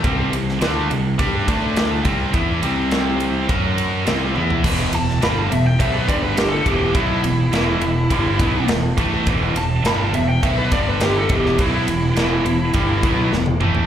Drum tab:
CC |----------------|----------------|x---------------|----------------|
RD |x-x-x-x-x-x-x-x-|x-x-x-x-x-x-x---|--x-x-x-x-x-x-x-|x-x-x-x-x-x-x-x-|
SD |---oo-------o---|----o-------o---|---oo-------o---|----o-------o---|
T1 |----------------|--------------o-|----------------|----------------|
T2 |----------------|----------------|----------------|----------------|
FT |----------------|---------------o|----------------|----------------|
BD |o-------o-o---o-|o-------o-------|o-------o-o---o-|o-------o-o---o-|

CC |----------------|----------------|
RD |x-x-x-x-x-x-x-x-|x-x-x-x-x-x-----|
SD |----o-------o--o|----o-------o---|
T1 |----------------|-------------o--|
T2 |----------------|--------------o-|
FT |----------------|---------------o|
BD |o-------o-o---o-|o-------o-o-----|